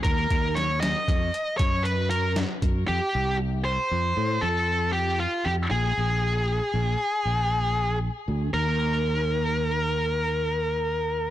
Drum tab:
HH |xxxxxxxxxxx|-----------|-----------|-----------|
SD |--oo-----o-|-----------|-----------|-----------|
BD |oo--o-o---o|-----------|-----------|-----------|